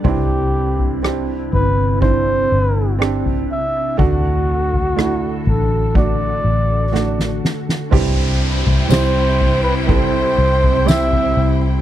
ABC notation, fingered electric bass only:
X:1
M:4/4
L:1/16
Q:1/4=61
K:Clyd
V:1 name="Fingered electric bass" clef=bass
C,,6 G,,,4 G,,,4 z2 | D,,6 A,,,4 A,,,4 z2 | C,,3 C,, C,,6 C,,4 C,,2 |]